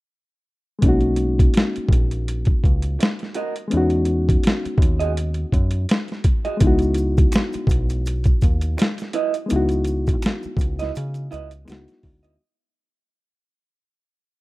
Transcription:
0.79 3.66 G#3 medium
0.79 3.67 A#3 medium
0.79 kick loud
0.79 closed hi-hat medium
0.83 1.47 B1 medium
0.83 3.68 C#4 medium
0.83 3.69 D#4 medium
0.89 3.71 F#4 medium
1.01 closed hi-hat soft
1.16 closed hi-hat medium
1.39 kick medium
1.39 closed hi-hat soft
1.54 snare loud
1.54 closed hi-hat medium
1.76 muted picked electric bass stroke soft
1.76 closed hi-hat soft
1.89 2.55 A#1 medium
1.89 kick medium
1.93 closed hi-hat medium
2.11 closed hi-hat soft
2.28 closed hi-hat medium
2.45 kick medium
2.45 closed hi-hat soft
2.64 2.96 C#2 medium
2.64 kick medium
2.64 closed hi-hat soft
2.82 closed hi-hat soft
2.99 muted clean electric guitar stroke soft
2.99 snare medium
2.99 closed hi-hat medium
3.19 snare soft
3.19 closed hi-hat soft
3.34 3.54 F#4 medium
3.34 3.54 A#4 medium
3.34 3.54 D#5 medium
3.34 closed hi-hat medium
3.56 closed hi-hat soft
3.68 6.55 G#3 medium
3.68 6.56 B3 medium
3.68 closed hi-hat medium
3.72 4.37 E2 medium
3.72 6.57 C#4 medium
3.72 6.58 D#4 medium
3.77 6.60 F#4 medium
3.90 closed hi-hat soft
4.05 closed hi-hat medium
4.29 kick medium
4.29 closed hi-hat soft
4.43 snare loud
4.43 closed hi-hat medium
4.65 muted picked electric bass stroke soft
4.65 closed hi-hat soft
4.78 5.44 D#2 medium
4.78 kick medium
4.82 closed hi-hat medium
5.00 5.12 F#4 medium
5.00 5.12 G#4 medium
5.00 5.11 D#5 medium
5.00 closed hi-hat soft
5.17 closed hi-hat medium
5.34 closed hi-hat soft
5.52 5.85 F#2 medium
5.52 kick medium
5.52 closed hi-hat soft
5.71 closed hi-hat medium
5.89 snare medium
5.89 closed hi-hat medium
6.08 snare soft
6.08 closed hi-hat soft
6.24 kick medium
6.24 closed hi-hat medium
6.45 6.56 F#4 soft
6.45 6.56 G#4 soft
6.45 6.56 D#5 medium
6.45 closed hi-hat soft
6.57 9.44 G#3 medium
6.57 9.45 B3 medium
6.57 kick loud
6.57 closed hi-hat medium
6.57 maracas medium
6.62 7.26 C#2 medium
6.62 9.47 D#4 medium
6.62 9.48 E4 medium
6.67 9.49 F#4 medium
6.79 closed hi-hat soft
6.79 maracas soft
6.94 closed hi-hat medium
6.94 maracas soft
7.17 kick medium
7.17 closed hi-hat soft
7.17 maracas soft
7.32 finger snap medium
7.32 snare loud
7.32 closed hi-hat medium
7.32 maracas medium
7.53 muted picked electric bass stroke soft
7.53 closed hi-hat soft
7.53 maracas soft
7.67 8.33 B1 medium
7.67 kick medium
7.67 maracas soft
7.71 closed hi-hat medium
7.90 closed hi-hat soft
7.90 maracas soft
8.06 closed hi-hat medium
8.06 maracas medium
8.24 kick medium
8.24 closed hi-hat soft
8.24 maracas soft
8.41 8.75 D#2 medium
8.41 kick medium
8.41 closed hi-hat soft
8.41 maracas soft
8.61 closed hi-hat soft
8.61 maracas soft
8.77 finger snap medium
8.77 muted clean electric guitar stroke soft
8.77 closed hi-hat medium
8.77 maracas medium
8.82 snare medium
8.98 snare soft
8.98 closed hi-hat soft
8.98 maracas soft
9.13 9.32 E4 medium
9.13 9.32 B4 medium
9.13 9.33 D#5 medium
9.13 closed hi-hat medium
9.34 closed hi-hat soft
9.34 maracas soft
9.46 11.61 G#3 medium
9.46 11.62 B3 medium
9.46 maracas medium
9.50 10.16 C#2 medium
9.50 11.63 D#4 medium
9.50 11.65 E4 medium
9.50 closed hi-hat medium
9.56 11.66 F#4 medium
9.69 closed hi-hat soft
9.69 maracas soft
9.84 closed hi-hat medium
9.84 maracas soft
10.07 kick medium
10.07 closed hi-hat soft
10.07 maracas soft
10.22 finger snap medium
10.22 snare loud
10.22 closed hi-hat medium
10.22 maracas medium
10.43 muted picked electric bass stroke soft
10.43 maracas soft
10.57 10.90 C#2 medium
10.57 kick medium
10.57 maracas soft
10.61 closed hi-hat medium
10.79 10.91 E4 medium
10.79 10.90 B4 medium
10.79 10.90 D#5 medium
10.79 snare soft
10.79 closed hi-hat soft
10.79 maracas soft
10.94 11.28 C#3 medium
10.94 muted clean electric guitar stroke soft
10.94 closed hi-hat medium
10.94 maracas medium
11.14 closed hi-hat soft
11.14 maracas soft
11.31 11.64 C#2 medium
11.31 11.49 E4 medium
11.31 11.49 B4 medium
11.31 11.49 D#5 medium
11.31 closed hi-hat soft
11.31 maracas soft
11.51 closed hi-hat medium
11.51 maracas soft
11.65 11.86 C#2 medium
11.65 12.38 G#3 medium
11.65 12.39 B3 medium
11.65 12.40 D#4 medium
11.65 12.40 E4 medium
11.65 finger snap medium
11.65 maracas medium
11.70 12.41 F#4 medium
11.70 snare loud
11.70 closed hi-hat medium
11.88 snare soft
11.88 closed hi-hat soft
11.88 maracas soft
12.03 12.36 D2 medium
12.03 kick medium
12.03 open hi-hat soft
12.23 12.35 E4 soft
12.23 12.35 B4 soft
12.23 12.34 D#5 medium
12.23 closed hi-hat soft
12.23 maracas soft

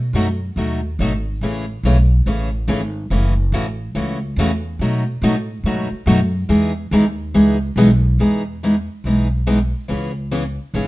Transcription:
0.00 0.13 B2 medium
0.13 0.55 F#2 medium
0.13 0.26 B2 medium
0.13 0.27 F#3 medium
0.13 0.27 A3 medium
0.13 0.27 D#4 medium
0.13 0.27 F#4 medium
0.56 0.98 D#2 medium
0.56 0.79 B2 medium
0.56 0.79 F#3 medium
0.56 0.79 A3 medium
0.56 0.79 D#4 medium
0.56 0.79 F#4 medium
0.99 1.40 G#1 medium
0.99 1.11 B2 medium
0.99 1.11 F#3 medium
0.99 1.12 A3 medium
0.99 1.12 D#4 medium
0.99 1.12 F#4 loud
1.41 1.83 A1 medium
1.41 1.64 C#3 medium
1.41 1.64 E3 medium
1.41 1.64 A3 medium
1.41 1.64 C#4 medium
1.41 1.65 G#4 medium
1.83 2.25 B1 medium
1.83 1.96 C#3 medium
1.83 1.96 E3 medium
1.83 1.96 A3 medium
1.83 1.97 C#4 medium
1.83 1.96 G#4 medium
2.26 2.67 A1 medium
2.26 2.48 C#3 medium
2.26 2.48 E3 medium
2.26 2.48 A3 medium
2.26 2.49 C#4 medium
2.26 2.48 G#4 medium
2.68 3.09 G#1 medium
2.68 2.80 C#3 medium
2.68 2.80 E3 medium
2.68 2.80 A3 medium
2.68 2.80 C#4 medium
2.68 2.81 G#4 medium
3.10 3.52 F#1 medium
3.10 3.33 C#3 medium
3.10 3.33 E3 medium
3.10 3.33 A3 medium
3.10 3.33 C#4 medium
3.10 3.33 F#4 medium
3.52 3.94 A1 medium
3.52 3.65 C#3 medium
3.52 3.65 E3 medium
3.52 3.65 A3 medium
3.52 3.65 C#4 medium
3.52 3.65 F#4 loud
3.95 4.36 C#2 medium
3.95 4.17 C#3 medium
3.95 4.17 E3 medium
3.95 4.17 A3 medium
3.95 4.17 C#4 medium
3.95 4.18 F#4 medium
4.36 4.78 E2 medium
4.36 4.50 C#3 medium
4.36 4.50 E3 medium
4.36 4.50 A3 loud
4.36 4.50 C#4 loud
4.36 4.50 F#4 medium
4.79 5.21 B2 medium
4.79 5.03 B2 medium
4.79 5.03 F#3 medium
4.79 5.03 A3 medium
4.79 5.03 D#4 medium
4.79 5.03 F#4 medium
5.22 5.63 A2 medium
5.22 5.34 B2 medium
5.22 5.35 F#3 medium
5.22 5.35 A3 medium
5.22 5.35 D#4 loud
5.22 5.35 F#4 loud
5.63 5.89 G#2 medium
5.63 5.87 B2 medium
5.63 5.87 F#3 medium
5.63 5.87 A3 medium
5.63 5.87 D#4 medium
5.63 5.88 F#4 medium
5.91 muted upright bass stroke soft
6.06 6.48 F#2 medium
6.06 6.19 B2 medium
6.06 6.19 F#3 loud
6.06 6.19 A3 medium
6.06 6.19 D#4 loud
6.06 6.19 F#4 loud
6.49 6.90 E2 medium
6.49 6.71 E3 medium
6.49 6.71 G#3 medium
6.49 6.71 B3 medium
6.49 6.71 D#4 medium
6.49 6.71 G#4 medium
6.91 7.33 D#2 medium
6.91 7.04 E3 medium
6.91 7.04 G#3 loud
6.91 7.04 B3 medium
6.91 7.04 D#4 medium
6.91 7.04 G#4 loud
7.34 7.75 C#2 medium
7.34 7.56 E3 medium
7.34 7.56 G#3 medium
7.34 7.56 B3 medium
7.34 7.56 D#4 medium
7.34 7.56 G#4 medium
7.76 8.17 B1 medium
7.76 7.88 E3 medium
7.76 7.89 G#3 medium
7.76 7.89 B3 loud
7.76 7.89 D#4 loud
7.76 7.89 G#4 loud
8.19 8.87 E2 medium
8.19 8.41 E3 medium
8.19 8.41 G#3 medium
8.19 8.41 B3 medium
8.19 8.42 D#4 medium
8.19 8.42 G#4 medium
8.63 8.74 E3 medium
8.63 8.74 G#3 medium
8.63 8.74 B3 medium
8.63 8.74 D#4 medium
8.63 8.75 G#4 medium
9.04 9.72 B1 medium
9.04 9.26 E3 medium
9.04 9.27 G#3 medium
9.04 9.27 B3 medium
9.04 9.27 D#4 medium
9.04 9.27 G#4 medium
9.47 9.58 E3 medium
9.47 9.58 G#3 medium
9.47 9.58 B3 medium
9.47 9.58 D#4 medium
9.47 9.58 G#4 medium
9.88 10.57 C#2 medium
9.88 10.10 C#3 medium
9.88 10.10 E3 medium
9.88 10.10 B3 medium
9.88 10.11 C#4 medium
9.88 10.11 G#4 medium
10.31 10.43 C#3 medium
10.31 10.43 E3 medium
10.31 10.43 B3 medium
10.31 10.43 C#4 medium
10.31 10.43 G#4 medium
10.74 10.87 G#1 medium
10.74 10.87 C#3 medium
10.74 10.87 E3 medium
10.74 10.87 B3 medium
10.74 10.87 C#4 medium
10.74 10.87 G#4 medium

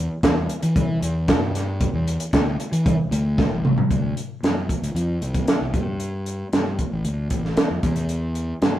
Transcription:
0.23 0.46 E2 medium
0.23 kick loud
0.23 snare loud
0.23 closed hi-hat medium
0.49 closed hi-hat medium
0.63 0.97 E3 medium
0.63 closed hi-hat medium
0.76 kick loud
0.76 closed hi-hat medium
1.02 1.41 E2 medium
1.02 closed hi-hat medium
1.28 kick loud
1.28 snare loud
1.28 closed hi-hat medium
1.41 1.87 G2 medium
1.55 snare soft
1.55 closed hi-hat medium
1.81 kick loud
1.81 closed hi-hat medium
1.94 2.16 E2 medium
2.08 closed hi-hat medium
2.20 closed hi-hat medium
2.33 2.56 D2 medium
2.33 kick medium
2.33 snare loud
2.33 closed hi-hat medium
2.60 closed hi-hat medium
2.72 2.95 E3 medium
2.72 closed hi-hat medium
2.86 kick loud
2.86 closed hi-hat medium
3.11 3.46 D2 loud
3.11 closed hi-hat medium
3.38 kick loud
3.38 snare medium
3.51 3.74 A1 medium
3.65 mid tom medium
3.78 floor tom medium
3.90 4.13 D2 medium
3.90 kick medium
3.90 closed hi-hat medium
4.17 closed hi-hat medium
4.43 4.66 F#2 medium
4.43 snare medium
4.43 closed hi-hat soft
4.69 kick medium
4.69 closed hi-hat medium
4.82 4.93 D2 medium
4.82 closed hi-hat medium
4.95 5.18 F2 medium
4.95 closed hi-hat medium
5.21 5.44 C2 medium
5.21 closed hi-hat soft
5.34 kick medium
5.34 closed hi-hat medium
5.48 snare loud
5.48 closed hi-hat medium
5.61 5.72 C2 medium
5.74 6.43 G2 medium
5.74 kick medium
5.74 closed hi-hat medium
6.00 closed hi-hat medium
6.26 closed hi-hat soft
6.53 6.76 G2 medium
6.53 snare medium
6.53 closed hi-hat medium
6.79 kick medium
6.79 closed hi-hat medium
6.92 7.03 A1 medium
7.05 7.28 D2 medium
7.05 closed hi-hat medium
7.30 7.54 A1 medium
7.30 kick medium
7.30 closed hi-hat medium
7.45 snare soft
7.57 snare loud
7.57 closed hi-hat medium
7.70 7.82 F2 medium
7.83 8.52 E2 medium
7.83 kick medium
7.83 closed hi-hat medium
7.96 closed hi-hat medium
8.09 closed hi-hat medium
8.35 closed hi-hat medium
8.62 8.79 G2 medium
8.62 snare loud
8.62 closed hi-hat soft

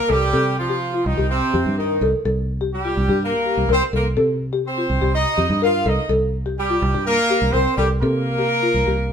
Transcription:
0.09 0.32 C2 loud
0.09 0.57 G3 loud
0.09 0.57 G4 loud
0.09 0.17 A4 medium
0.33 1.01 C3 loud
0.33 0.41 A4 loud
0.58 1.02 F3 medium
0.58 1.02 F4 medium
0.69 0.77 G4 medium
0.94 1.02 F4 medium
1.05 1.17 C2 medium
1.05 1.29 D#3 medium
1.05 1.29 D#4 loud
1.18 1.40 C2 medium
1.18 1.26 G4 medium
1.30 1.74 C3 medium
1.30 1.74 C4 loud
1.53 1.65 F2 loud
1.53 1.61 G4 medium
1.66 1.99 G2 loud
1.77 2.11 D#3 medium
1.77 2.11 D#4 medium
1.77 1.91 A#4 loud
2.01 2.12 C2 loud
2.01 2.10 A4 medium
2.25 2.93 C2 loud
2.25 2.34 A4 medium
2.61 2.69 G4 medium
2.74 3.18 G3 medium
2.74 3.18 G4 medium
2.85 2.93 F4 medium
2.97 3.08 C2 loud
3.08 3.31 G2 medium
3.08 3.17 G4 medium
3.24 3.71 A#3 medium
3.24 3.71 A#4 loud
3.45 3.58 G4 medium
3.57 3.68 C2 medium
3.68 3.80 C2 loud
3.68 3.82 C4 medium
3.68 3.78 A#4 medium
3.68 3.82 C5 loud
3.93 4.16 C2 loud
3.93 4.05 A#3 medium
3.93 4.01 A4 medium
3.93 4.05 A#4 medium
4.17 4.85 C3 medium
4.17 4.25 A4 loud
4.53 4.61 G4 medium
4.67 5.11 C4 medium
4.67 5.11 C5 medium
4.78 4.86 F4 medium
4.90 5.01 C2 loud
5.01 5.24 C2 medium
5.01 5.09 G4 medium
5.14 5.59 D#4 loud
5.14 5.59 D#5 loud
5.37 5.49 F2 medium
5.37 5.45 G4 medium
5.50 5.83 G2 loud
5.62 5.87 F4 medium
5.62 5.70 A#4 medium
5.62 5.87 F5 loud
5.86 5.97 C2 medium
5.86 6.11 D#4 medium
5.86 5.94 A4 medium
5.86 6.11 D#5 medium
6.09 6.78 C2 medium
6.09 6.17 A4 medium
6.46 6.54 G4 medium
6.58 7.03 G3 medium
6.58 7.03 G4 loud
6.70 6.78 F4 medium
6.82 6.93 C2 loud
6.94 7.17 G2 medium
6.94 7.03 G4 medium
7.06 7.51 A#3 loud
7.06 7.51 A#4 loud
7.30 7.38 G4 medium
7.42 7.53 C2 medium
7.52 7.65 C2 medium
7.52 7.77 C4 medium
7.52 7.62 A#4 medium
7.52 7.77 C5 loud
7.77 8.00 C2 loud
7.77 7.88 G3 medium
7.77 7.88 G4 medium
7.77 7.86 A4 medium
8.00 8.70 C3 loud
8.00 9.13 A#3 loud
8.00 8.11 A4 medium
8.00 9.13 A#4 loud
8.38 8.46 G4 medium
8.63 8.71 F4 medium
8.74 8.86 C2 medium
8.87 9.09 C2 medium
8.87 8.95 G4 medium

